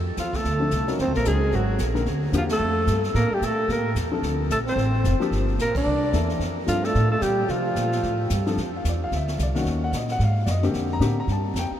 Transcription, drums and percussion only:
0.17 snare soft
0.17 hi-hat pedal soft
0.33 kick soft
0.33 snare soft
0.44 brush sweep soft
0.44 snare soft
0.71 snare soft
0.71 hi-hat pedal soft
0.87 snare soft
0.98 brush sweep soft
0.98 snare soft
1.14 snare soft
1.25 snare soft
1.25 hi-hat pedal medium
1.52 brush sweep soft
1.52 snare soft
1.78 snare medium
1.78 hi-hat pedal medium
1.95 snare soft
2.06 brush sweep soft
2.06 snare soft
2.33 snare soft
2.33 hi-hat pedal medium
2.49 snare medium
2.49 ride medium
2.60 brush sweep medium
2.87 snare medium
2.87 hi-hat pedal medium
3.04 snare soft
3.15 brush sweep medium
3.15 snare soft
3.42 snare medium
3.42 hi-hat pedal soft
3.69 brush sweep soft
3.69 snare soft
3.96 snare soft
3.96 hi-hat pedal medium
4.23 brush sweep soft
4.23 snare soft
4.50 snare medium
4.50 hi-hat pedal soft
4.67 snare soft
4.78 brush sweep soft
4.78 snare soft
5.04 snare medium
5.04 hi-hat pedal soft
5.21 snare soft
5.32 brush sweep soft
5.32 snare soft
5.59 snare medium
5.59 hi-hat pedal soft
5.75 kick medium
5.75 ride medium
5.86 brush sweep soft
6.13 snare medium
6.13 hi-hat pedal soft
6.29 snare soft
6.40 brush sweep soft
6.40 snare soft
6.67 snare medium
6.67 hi-hat pedal medium
6.84 snare soft
6.94 brush sweep soft
6.94 snare soft
7.21 snare medium
7.21 hi-hat pedal soft
7.48 brush sweep medium
7.48 snare soft
7.76 snare medium
7.76 hi-hat pedal soft
7.92 snare soft
8.03 brush sweep soft
8.03 snare soft
8.30 snare soft
8.30 hi-hat pedal medium
8.46 snare soft
8.57 brush sweep soft
8.57 snare soft
8.85 snare medium
8.85 hi-hat pedal medium
9.12 brush sweep soft
9.12 snare soft
9.28 snare soft
9.39 snare medium
9.39 hi-hat pedal medium
9.55 snare soft
9.66 brush sweep soft
9.66 snare soft
9.93 snare medium
9.93 hi-hat pedal soft
10.08 snare soft
10.20 brush sweep soft
10.20 snare soft
10.47 snare medium
10.47 hi-hat pedal soft
10.63 snare soft
10.74 brush sweep soft
10.74 snare soft
11.01 snare medium
11.01 hi-hat pedal soft
11.28 brush sweep soft
11.28 snare soft
11.55 snare medium
11.55 hi-hat pedal medium

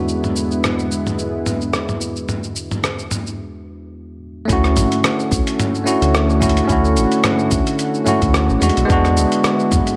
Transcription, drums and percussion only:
0.09 cabasa soft
0.24 mid tom medium
0.24 cabasa soft
0.36 cabasa medium
0.51 cabasa soft
0.64 cross-stick medium
0.64 mid tom medium
0.64 cabasa soft
0.79 cabasa soft
0.92 cabasa medium
1.07 mid tom medium
1.07 cabasa soft
1.19 cabasa soft
1.46 mid tom medium
1.46 cabasa medium
1.61 cabasa soft
1.73 cross-stick medium
1.73 cabasa soft
1.89 mid tom medium
1.89 cabasa soft
2.01 cabasa medium
2.16 cabasa soft
2.29 mid tom medium
2.29 cabasa soft
2.44 cabasa soft
2.56 cabasa medium
2.71 mid tom medium
2.71 cabasa soft
2.84 cross-stick medium
2.84 cabasa soft
2.99 cabasa soft
3.11 mid tom medium
3.11 cabasa medium
3.27 cabasa soft
4.49 kick loud
4.49 closed hi-hat medium
4.49 cabasa soft
4.64 cross-stick soft
4.64 cabasa soft
4.77 closed hi-hat soft
4.77 mid tom medium
4.77 cabasa medium
4.92 closed hi-hat soft
4.92 cabasa soft
5.04 cross-stick loud
5.04 closed hi-hat medium
5.04 cabasa soft
5.20 cabasa soft
5.32 kick loud
5.32 closed hi-hat soft
5.32 cabasa medium
5.47 closed hi-hat soft
5.47 cabasa soft
5.60 closed hi-hat medium
5.60 mid tom medium
5.60 cabasa soft
5.75 cabasa soft
5.87 cabasa medium
6.02 closed hi-hat soft
6.02 cabasa soft
6.15 cross-stick loud
6.15 cabasa soft
6.30 cabasa soft
6.41 kick medium
6.41 closed hi-hat soft
6.41 mid tom medium
6.41 cabasa medium
6.49 closed hi-hat medium
6.57 closed hi-hat soft
6.57 cabasa soft
6.69 kick loud
6.69 closed hi-hat medium
6.69 cabasa soft
6.85 cabasa soft
6.97 closed hi-hat soft
6.97 cabasa medium
7.12 closed hi-hat soft
7.12 cabasa soft
7.24 cross-stick loud
7.24 closed hi-hat medium
7.24 mid tom medium
7.24 cabasa soft
7.39 cabasa soft
7.51 kick loud
7.51 closed hi-hat soft
7.51 cabasa medium
7.67 closed hi-hat soft
7.67 cabasa soft
7.79 closed hi-hat medium
7.79 cabasa soft
7.94 cabasa soft
8.07 mid tom medium
8.07 cabasa medium
8.22 kick loud
8.22 closed hi-hat soft
8.22 cabasa soft
8.34 cross-stick loud
8.34 cabasa soft
8.50 cabasa soft
8.62 closed hi-hat soft
8.62 cabasa medium
8.69 closed hi-hat medium
8.77 closed hi-hat soft
8.77 cabasa soft
8.89 kick loud
8.89 closed hi-hat medium
8.89 mid tom medium
8.89 cabasa soft
9.05 cross-stick soft
9.05 cabasa soft
9.17 closed hi-hat soft
9.17 cabasa medium
9.32 closed hi-hat soft
9.32 cabasa soft
9.44 cross-stick loud
9.44 closed hi-hat medium
9.44 cabasa soft
9.60 cabasa soft
9.72 kick loud
9.72 closed hi-hat soft
9.72 mid tom medium
9.72 cabasa medium
9.87 closed hi-hat soft
9.87 cabasa soft

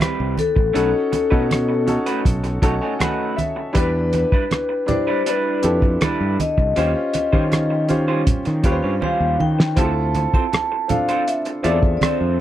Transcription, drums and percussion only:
0.00 cross-stick loud
0.00 closed hi-hat medium
0.00 high conga medium
0.38 closed hi-hat medium
0.38 high conga medium
0.56 kick medium
0.75 closed hi-hat medium
1.13 closed hi-hat medium
1.13 muted conga soft
1.32 kick medium
1.51 cross-stick medium
1.51 closed hi-hat medium
1.51 high conga medium
1.88 closed hi-hat medium
1.88 muted conga soft
2.06 closed hi-hat medium
2.25 kick medium
2.25 closed hi-hat medium
2.25 low conga medium
2.44 cross-stick soft
2.44 closed hi-hat soft
2.62 kick medium
2.62 closed hi-hat medium
3.00 cross-stick loud
3.00 closed hi-hat medium
3.00 high conga medium
3.38 closed hi-hat medium
3.38 high conga medium
3.75 kick medium
3.75 closed hi-hat medium
4.13 closed hi-hat medium
4.13 muted conga soft
4.32 kick medium
4.51 cross-stick medium
4.51 closed hi-hat medium
4.51 high conga medium
4.88 closed hi-hat medium
4.88 muted conga soft
4.88 low conga medium
5.26 closed hi-hat medium
5.63 closed hi-hat medium
5.63 muted conga soft
5.82 kick medium
6.01 cross-stick loud
6.01 closed hi-hat medium
6.01 high conga medium
6.40 closed hi-hat medium
6.40 high conga medium
6.58 kick medium
6.76 closed hi-hat medium
7.13 closed hi-hat medium
7.13 muted conga soft
7.33 kick medium
7.52 cross-stick medium
7.52 closed hi-hat medium
7.52 high conga soft
7.89 closed hi-hat medium
7.89 muted conga soft
8.27 kick medium
8.27 closed hi-hat medium
8.27 low conga medium
8.45 cross-stick soft
8.45 closed hi-hat soft
8.64 kick medium
8.64 closed hi-hat medium
9.02 high conga medium
9.40 high conga medium
9.60 snare medium
9.77 kick medium
9.77 closed hi-hat medium
10.15 closed hi-hat medium
10.15 muted conga soft
10.34 kick medium
10.53 cross-stick medium
10.53 closed hi-hat medium
10.53 high conga medium
10.89 closed hi-hat medium
10.89 muted conga soft
10.89 low conga medium
11.09 closed hi-hat soft
11.28 closed hi-hat medium
11.45 closed hi-hat soft
11.64 closed hi-hat medium
11.64 muted conga soft
11.83 kick medium
12.01 cross-stick loud
12.01 closed hi-hat medium
12.01 high conga medium

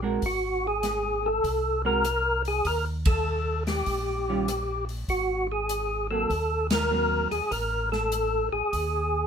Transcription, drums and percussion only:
0.22 kick soft
0.22 open hi-hat soft
0.83 snare soft
0.83 closed hi-hat soft
1.44 kick soft
1.44 open hi-hat soft
2.04 cross-stick medium
2.04 closed hi-hat medium
2.45 open hi-hat soft
2.65 kick soft
2.65 open hi-hat soft
3.05 kick medium
3.05 ride medium
3.67 snare medium
3.67 open hi-hat soft
3.86 kick soft
3.86 open hi-hat soft
4.48 cross-stick medium
4.48 closed hi-hat medium
4.89 open hi-hat soft
5.08 kick soft
5.08 open hi-hat soft
5.69 closed hi-hat medium
6.30 kick soft
6.30 open hi-hat soft
6.70 snare medium
6.70 ride medium
7.32 open hi-hat soft
7.51 kick soft
7.51 open hi-hat soft
7.93 snare soft
8.12 closed hi-hat medium
8.73 kick soft
8.73 open hi-hat soft

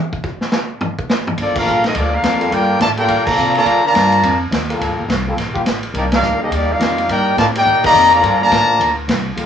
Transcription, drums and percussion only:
0.13 kick medium
0.24 kick medium
0.41 snare medium
0.51 snare loud
0.51 hi-hat pedal medium
0.81 floor tom loud
0.99 kick medium
1.09 snare loud
1.09 hi-hat pedal medium
1.27 floor tom loud
1.38 ride medium
1.56 kick loud
1.56 crash medium
1.66 hi-hat pedal medium
1.84 snare medium
1.84 ride medium
1.95 ride medium
2.23 snare medium
2.23 hi-hat pedal medium
2.23 ride medium
2.41 ride medium
2.52 ride medium
2.81 snare medium
2.81 hi-hat pedal medium
2.81 ride medium
2.97 ride medium
3.08 ride medium
3.27 kick loud
3.27 crash medium
3.37 hi-hat pedal medium
3.55 ride medium
3.66 ride medium
3.95 snare medium
3.95 hi-hat pedal medium
3.95 ride medium
4.12 ride medium
4.23 ride medium
4.52 snare medium
4.52 hi-hat pedal medium
4.52 ride medium
4.70 ride medium
4.81 ride medium
5.10 snare medium
5.10 hi-hat pedal medium
5.10 ride medium
5.38 snare soft
5.38 ride medium
5.56 kick medium
5.66 snare medium
5.66 hi-hat pedal medium
5.66 ride medium
5.83 ride medium
5.94 ride medium
6.12 snare loud
6.12 ride medium
6.23 hi-hat pedal medium
6.52 ride medium
6.80 snare medium
6.80 hi-hat pedal medium
6.80 ride medium
6.98 ride medium
7.09 ride medium
7.38 snare medium
7.38 hi-hat pedal medium
7.38 ride medium
7.55 ride medium
7.84 kick loud
7.84 crash medium
7.95 hi-hat pedal medium
8.12 ride medium
8.23 ride medium
8.52 snare medium
8.52 hi-hat pedal medium
8.52 ride medium
8.81 ride medium
9.09 snare medium
9.09 hi-hat pedal medium
9.09 ride medium
9.37 ride medium

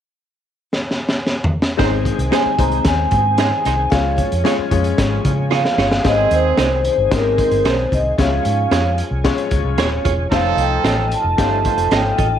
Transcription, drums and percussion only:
0.73 snare medium
0.91 snare medium
1.09 snare medium
1.27 snare medium
1.44 floor tom loud
1.62 snare medium
1.79 kick medium
1.79 snare loud
1.79 crash medium
2.05 kick medium
2.05 closed hi-hat medium
2.19 closed hi-hat soft
2.32 snare loud
2.32 closed hi-hat medium
2.59 kick medium
2.59 closed hi-hat medium
2.71 closed hi-hat soft
2.85 kick loud
2.85 snare loud
2.85 closed hi-hat loud
3.11 kick medium
3.11 closed hi-hat medium
3.38 snare loud
3.38 closed hi-hat medium
3.65 snare soft
3.65 closed hi-hat medium
3.92 kick medium
3.92 snare loud
3.92 closed hi-hat medium
4.18 kick medium
4.18 closed hi-hat medium
4.32 closed hi-hat medium
4.45 snare loud
4.45 closed hi-hat medium
4.71 kick medium
4.71 closed hi-hat medium
4.84 closed hi-hat soft
4.98 kick medium
4.98 snare loud
4.98 closed hi-hat loud
5.25 kick medium
5.25 closed hi-hat medium
5.52 snare medium
5.65 snare medium
5.78 snare medium
5.91 snare medium
6.04 kick medium
6.04 snare medium
6.04 closed hi-hat medium
6.31 closed hi-hat medium
6.58 snare medium
6.58 closed hi-hat medium
6.85 closed hi-hat medium
7.12 kick medium
7.12 snare loud
7.12 closed hi-hat loud
7.38 kick loud
7.38 closed hi-hat medium
7.51 closed hi-hat medium
7.65 snare loud
7.65 closed hi-hat medium
7.92 kick medium
7.92 closed hi-hat medium
8.18 kick loud
8.18 snare medium
8.18 closed hi-hat medium
8.45 closed hi-hat medium
8.71 snare medium
8.71 closed hi-hat medium
8.98 closed hi-hat medium
9.25 kick loud
9.25 snare loud
9.25 closed hi-hat medium
9.38 closed hi-hat soft
9.51 kick loud
9.51 closed hi-hat medium
9.78 snare loud
9.78 closed hi-hat medium
10.05 kick medium
10.05 closed hi-hat medium
10.32 kick medium
10.32 snare medium
10.32 closed hi-hat medium
10.58 closed hi-hat medium
10.85 snare loud
10.85 closed hi-hat medium
11.12 closed hi-hat medium
11.38 kick medium
11.38 snare loud
11.38 closed hi-hat loud
11.65 kick medium
11.65 closed hi-hat medium
11.78 closed hi-hat medium
11.91 snare loud
11.91 closed hi-hat medium
12.18 kick medium
12.18 closed hi-hat medium

